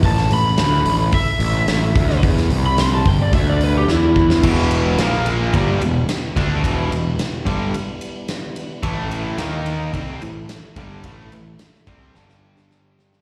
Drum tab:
CC |----------------|----------------|x---------------|----------------|
RD |----------------|----------------|--x-x-x-x-x-x-x-|x-x-x-x-x-x-x-x-|
HH |o-o-o-o-o-o-o-o-|o-o-o-o-o-o-----|----------------|----------------|
SD |-o--o-------o--o|-o--o-------o--o|----oo------o---|----o-------o---|
BD |o-------o-----o-|o-----o-o-----o-|o-------o-----o-|o-----o---------|

CC |----------------|----------------|
RD |x-x-x-x-x-x-x-x-|x-x-x-x---------|
HH |----------------|----------------|
SD |----o-------o---|----oo--oo-oo-oo|
BD |o-------o-----o-|o-----o---------|